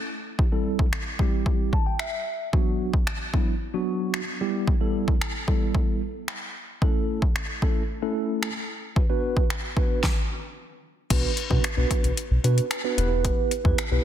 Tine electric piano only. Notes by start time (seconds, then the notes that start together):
0.39 E4 G4
0.52 G3 C4 E4 A4
1.19 G3 C4 E4 G4
1.73 A5
1.86 G5
2.00 E5
2.53 F#3 B3 D4 F#4
3.33 F#3 B3 D4 E4
3.74 F#3 B3 D4 F#4
4.41 G3 B3 E4 G4
4.81 G3 B3 E4 A4
5.48 G3 B3 E4 A4
6.82 A3 C#4 E4 A4
7.62 A3 C#4 E4 A4
8.02 A3 C#4 E4 A4
8.96 F#4 B4
9.09 B3 D4 F#4 B4
9.76 B3 D4 F#4 B4
11.10 B3 D4 F#4 B4
11.50 B3 D4 F#4 B4
11.77 B3 D4 F#4 B4
12.44 B3 D4 F#4 B4
12.84 B3 D4 F#4 B4
12.97 B3 E4 G4 B4
13.64 B3 E4 G4 B4
13.91 B3 E4 G4 B4